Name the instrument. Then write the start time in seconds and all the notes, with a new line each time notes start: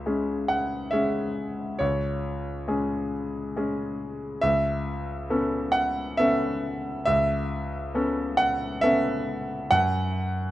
grand piano
Already playing: C#2 E5
0.06 G#3 C#4 G#4
0.48 F#5
0.91 G#3 C#4 G#4 E5
1.79 C#2 C#5
2.68 G#3 C#4 G#4
3.56 G#3 C#4 G#4
4.41 C#2 E5
5.30 B3 C#4 A4
5.72 F#5
6.17 B3 C#4 A4 E5
7.05 C#2 E5
7.95 B3 C#4 A4
8.37 F#5
8.81 B3 C#4 A4 E5
9.71 F#2 F#5